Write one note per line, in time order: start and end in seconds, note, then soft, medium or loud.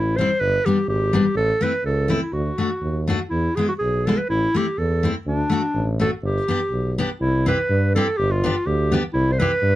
0.00 0.23 A1 medium
0.00 0.19 E4 medium
0.17 0.29 G3 medium
0.17 0.29 C4 medium
0.17 0.30 E4 medium
0.17 0.42 C5 loud
0.40 0.57 G1 medium
0.40 0.67 B4 loud
0.66 0.76 G3 medium
0.66 0.77 B3 medium
0.66 0.77 D4 medium
0.66 0.88 G4 medium
0.87 1.19 G#1 medium
0.87 1.33 G4 medium
1.13 1.23 G3 medium
1.13 1.24 B3 medium
1.13 1.24 D4 medium
1.35 1.52 A1 medium
1.35 1.64 A4 loud
1.61 1.71 A3 medium
1.61 1.72 C4 medium
1.61 1.72 E4 medium
1.61 1.84 B4 medium
1.84 2.16 C#2 medium
1.84 2.20 A4 medium
2.08 2.19 A3 medium
2.08 2.20 C4 medium
2.08 2.20 E4 medium
2.22 2.35 E4 medium
2.33 2.50 D2 medium
2.33 3.08 F#4 medium
2.58 2.69 A3 medium
2.58 2.69 D4 medium
2.58 2.69 F#4 medium
2.81 3.14 D#2 medium
3.08 3.18 A3 medium
3.08 3.19 D4 medium
3.08 3.19 F#4 medium
3.29 3.48 E2 medium
3.29 3.57 E4 medium
3.56 3.67 G#3 medium
3.56 3.68 B3 soft
3.56 3.68 E4 medium
3.56 3.68 G#4 medium
3.69 3.74 F#4 medium
3.79 4.12 B1 medium
3.79 4.08 G#4 medium
4.06 4.17 G#3 medium
4.06 4.17 B3 medium
4.06 4.18 E4 medium
4.06 4.19 A4 medium
4.17 4.29 B4 medium
4.29 4.46 A1 medium
4.29 4.58 E4 loud
4.54 4.65 A3 medium
4.54 4.65 C4 medium
4.54 4.66 E4 medium
4.54 4.80 G4 medium
4.78 5.09 E2 medium
4.78 5.15 A4 medium
5.03 5.13 A3 medium
5.03 5.14 C4 medium
5.03 5.14 E4 medium
5.26 5.43 D2 medium
5.26 5.96 D4 medium
5.50 5.60 A3 medium
5.50 5.61 D4 medium
5.50 5.62 F#4 medium
5.74 6.05 A1 medium
5.99 6.09 A3 medium
5.99 6.10 D4 medium
5.99 6.10 F#4 medium
5.99 6.11 A4 loud
6.22 6.39 G1 medium
6.22 6.95 G4 medium
6.48 6.58 B3 medium
6.48 6.59 D4 soft
6.48 6.59 G4 medium
6.71 7.03 B1 medium
6.98 7.08 B3 medium
6.98 7.09 D4 medium
6.98 7.09 G4 medium
7.21 7.53 C2 medium
7.21 7.45 E4 medium
7.46 7.56 C4 medium
7.46 7.57 E4 medium
7.46 7.58 G4 medium
7.46 7.93 B4 medium
7.70 8.01 G2 loud
7.95 8.06 C4 medium
7.95 8.06 E4 medium
7.95 8.06 G4 medium
7.95 8.19 A4 medium
8.17 8.49 G1 loud
8.17 8.33 G4 loud
8.31 8.68 F4 medium
8.44 8.54 B3 medium
8.44 8.54 D4 medium
8.44 8.55 G4 medium
8.66 8.97 D2 loud
8.66 9.03 G4 medium
8.92 9.02 B3 medium
8.92 9.02 D4 medium
8.92 9.02 G4 medium
9.13 9.45 C2 medium
9.13 9.34 E4 loud
9.32 9.40 C5 medium
9.39 9.50 C4 medium
9.39 9.50 E4 medium
9.39 9.51 G4 medium
9.39 9.76 B4 loud
9.62 9.76 G2 loud